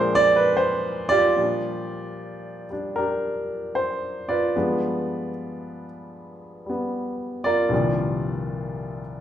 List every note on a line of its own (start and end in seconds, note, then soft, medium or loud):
0.00 1.34 A#2 medium
0.00 1.35 F3 medium
0.00 1.37 G#3 medium
0.00 1.36 D4 medium
0.00 1.37 A#4 medium
0.00 0.24 C5 medium
0.15 0.34 D5 loud
0.36 0.52 B4 medium
0.57 1.20 C5 medium
1.09 2.67 F4 medium
1.09 2.67 G4 medium
1.09 2.66 D5 loud
1.36 4.55 A#2 soft
1.36 4.55 F3 soft
1.36 2.69 G3 soft
1.36 2.71 D4 soft
2.70 4.55 G3 soft
2.70 2.97 D4 soft
2.96 4.52 D4 soft
2.96 4.52 G4 soft
2.96 3.71 A#4 medium
3.75 3.87 C5 medium
4.29 5.83 F4 medium
4.29 5.83 B4 medium
4.29 5.30 D5 medium
4.55 7.69 G2 soft
4.55 7.71 F3 soft
4.55 7.72 G#3 soft
4.55 6.68 B3 medium
6.66 7.71 G3 soft
6.66 7.73 B3 soft
7.44 9.00 F4 medium
7.44 9.00 A#4 medium
7.44 7.72 D5 medium
7.69 9.21 C2 medium
7.69 9.21 G2 soft
7.69 9.21 A#2 soft
7.69 9.21 D#3 soft
7.69 9.21 F3 medium
7.74 9.21 D5 medium